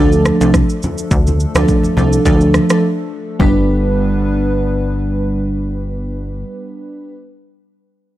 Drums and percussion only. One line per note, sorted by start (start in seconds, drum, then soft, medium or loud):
0.12 shaker soft
0.25 cross-stick medium
0.25 high conga medium
0.25 shaker soft
0.41 shaker medium
0.54 kick medium
0.54 cross-stick medium
0.54 shaker medium
0.70 shaker medium
0.83 high conga medium
0.83 low conga medium
0.83 shaker medium
0.98 shaker medium
1.11 kick loud
1.11 shaker medium
1.27 high conga medium
1.27 shaker medium
1.40 shaker medium
1.55 cross-stick loud
1.55 high conga medium
1.55 shaker medium
1.68 kick medium
1.68 low conga medium
1.68 shaker medium
1.83 high conga medium
1.83 shaker soft
1.97 low conga medium
1.97 shaker soft
2.13 shaker medium
2.25 kick loud
2.25 shaker medium
2.41 shaker soft
2.54 cross-stick medium
2.54 high conga medium
2.54 shaker soft
2.70 cross-stick medium
2.70 shaker medium
3.40 kick medium
3.40 high conga medium